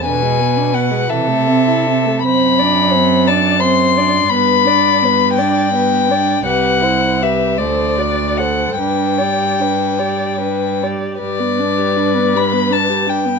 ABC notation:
X:1
M:6/8
L:1/16
Q:3/8=54
K:G
V:1 name="Violin"
^g4 f2 e6 | b6 a2 c'4 | b6 g6 | f4 e2 d4 f2 |
g8- g2 z2 | d6 b2 a2 g2 |]
V:2 name="Violin"
B6 A6 | c2 d2 c2 d2 c2 d2 | B2 d2 B2 d2 B2 d2 | B2 c2 B2 c2 d2 c2 |
B2 d2 B2 d2 B2 d2 | B12 |]
V:3 name="Viola"
D, ^G, B, D B, G, E, A, C E C A, | C2 D2 C2 D2 C2 D2 | B,2 D2 B,2 D2 B,2 D2 | G2 E2 G2 A2 F2 A2 |
D2 G2 D2 G2 D2 G2 | G, B, D G D B, G, B, D G D B, |]
V:4 name="Cello" clef=bass
B,,6 C,6 | F,,12 | G,,12 | C,,6 D,,6 |
G,,8- G,,2 z2 | G,,12 |]